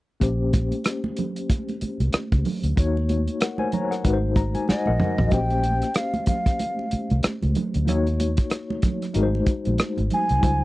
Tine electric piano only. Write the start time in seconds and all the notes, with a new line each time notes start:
0.20 A#3 C#4 G4 C5
2.76 A#3 D#4 F#4 C#5
3.41 A#4 F#5
3.59 C5 G#5
3.74 C#5 A#5
3.91 A#4 F#5
4.04 G#3 D#4 F#4 B4
4.13 C5
4.36 A#5
4.55 G#5
4.69 C5 F#5 G#5
4.87 A#4 D#5 F#5
5.19 F#4 D#5
5.31 A#3 C#4 G4 C5
7.85 A#3 D#4 F#4 C#5
9.14 G#3 D#4 F#4 A#4
9.23 C5
10.41 G3 D#4 F4 C5